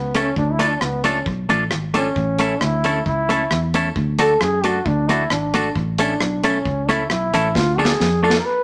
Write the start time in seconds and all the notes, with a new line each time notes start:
Already playing: C#2 B3
0.15 A3 C#4 E4 A4, closed hi-hat, tambourine
0.22 C#4
0.36 D2 D4, kick
0.52 E4
0.59 A3 D4 F4 A4, closed hi-hat, tambourine
0.68 D4
0.81 C#2 B3, cross-stick
1.04 A3 C#4 D4 F4 A4, closed hi-hat, tambourine
1.26 B1, kick
1.49 A1 A3 D4 F4 A4, closed hi-hat, tambourine
1.71 G#1, cross-stick
1.94 A3 C#4 D4 F4 A4, closed hi-hat, tambourine
2.16 A1, kick
2.39 A3 C#4 E4 A4, closed hi-hat, tambourine
2.61 D2 E4, cross-stick
2.84 A3 C#4 E4 A4, closed hi-hat, tambourine
3.06 C#2 E4, kick
3.29 A3 C#4 E4 A4, closed hi-hat, tambourine
3.51 E2, cross-stick
3.74 A3 C#4 E4 A4, closed hi-hat, tambourine
3.96 D2, kick
4.19 A3 D4 F#4 A4, closed hi-hat, tambourine
4.41 F#2 G#4, cross-stick
4.64 A3 D4 F#4 A4, closed hi-hat, tambourine
4.86 D2 D4, kick
5.09 A3 D4 E4 F#4 A4, closed hi-hat, tambourine
5.30 G#1 D4, cross-stick
5.54 A3 D4 F#4 A4, closed hi-hat, tambourine
5.76 A1, kick
5.98 A3 C#4 D4 E4 A4, closed hi-hat, tambourine
6.21 B1, cross-stick
6.44 A3 C#4 E4 A4, closed hi-hat, tambourine
6.65 C#2, kick
6.89 A3 C#4 E4 A4, closed hi-hat, tambourine
7.10 B1 E4, cross-stick
7.34 A1 A3 C#4 E4 A4, closed hi-hat, tambourine
7.55 D2 F4, kick, snare
7.78 A3 D4 F4 G#4 A4, tambourine
7.85 snare
8.00 F2, snare
8.23 A3 D4 F4 A4, tambourine
8.30 snare
8.39 A#4
8.45 B4